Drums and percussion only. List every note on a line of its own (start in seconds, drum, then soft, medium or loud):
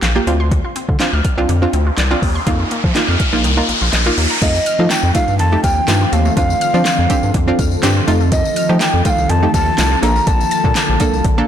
0.02 snare medium
0.02 clap loud
0.02 closed hi-hat medium
0.27 closed hi-hat medium
0.51 kick loud
0.51 closed hi-hat medium
0.76 closed hi-hat medium
0.89 kick medium
1.00 snare loud
1.00 clap loud
1.00 closed hi-hat medium
1.25 kick medium
1.25 closed hi-hat medium
1.49 closed hi-hat medium
1.73 closed hi-hat medium
1.98 snare medium
1.98 clap loud
1.98 closed hi-hat loud
2.22 kick medium
2.22 open hi-hat medium
2.47 kick loud
2.47 closed hi-hat medium
2.71 closed hi-hat medium
2.84 kick medium
2.95 snare loud
2.95 clap loud
2.95 closed hi-hat loud
3.20 kick medium
3.20 closed hi-hat medium
3.44 closed hi-hat medium
3.69 closed hi-hat medium
3.93 snare medium
3.93 clap loud
3.93 closed hi-hat loud
4.18 open hi-hat medium
4.42 kick loud
4.42 closed hi-hat medium
4.42 crash loud
4.42 tambourine soft
4.55 tambourine soft
4.66 closed hi-hat medium
4.66 tambourine medium
4.90 snare loud
4.90 clap loud
4.90 closed hi-hat loud
4.90 tambourine medium
5.15 kick medium
5.15 closed hi-hat medium
5.15 tambourine medium
5.28 tambourine soft
5.39 closed hi-hat medium
5.64 kick medium
5.64 closed hi-hat medium
5.64 tambourine soft
5.88 snare loud
5.88 clap loud
5.88 closed hi-hat loud
5.88 tambourine medium
6.12 closed hi-hat medium
6.12 tambourine medium
6.25 tambourine soft
6.37 kick loud
6.37 closed hi-hat medium
6.37 tambourine soft
6.50 tambourine soft
6.61 closed hi-hat medium
6.61 tambourine medium
6.74 tambourine soft
6.85 snare medium
6.85 clap loud
6.85 closed hi-hat medium
6.85 tambourine medium
7.10 kick medium
7.10 closed hi-hat medium
7.10 tambourine medium
7.23 tambourine soft
7.34 kick loud
7.34 closed hi-hat medium
7.59 kick medium
7.59 closed hi-hat medium
7.59 tambourine soft
7.72 tambourine soft
7.83 snare loud
7.83 clap loud
7.83 closed hi-hat loud
7.83 tambourine medium
8.08 closed hi-hat medium
8.08 tambourine medium
8.20 tambourine soft
8.32 kick loud
8.32 closed hi-hat loud
8.32 tambourine soft
8.45 tambourine soft
8.56 closed hi-hat medium
8.56 tambourine medium
8.80 snare loud
8.80 clap loud
8.80 closed hi-hat medium
8.80 tambourine medium
9.05 kick medium
9.05 closed hi-hat medium
9.05 tambourine medium
9.18 tambourine soft
9.29 closed hi-hat medium
9.54 kick medium
9.54 closed hi-hat medium
9.54 tambourine medium
9.78 snare loud
9.78 clap loud
9.78 closed hi-hat loud
9.78 tambourine medium
10.03 closed hi-hat medium
10.03 tambourine medium
10.16 tambourine soft
10.27 kick loud
10.27 closed hi-hat loud
10.27 tambourine soft
10.41 tambourine soft
10.51 closed hi-hat medium
10.51 tambourine medium
10.64 kick medium
10.75 snare medium
10.75 clap loud
10.75 closed hi-hat loud
10.75 tambourine medium
11.00 kick medium
11.00 closed hi-hat medium
11.00 tambourine medium
11.13 tambourine soft
11.24 kick medium
11.24 closed hi-hat medium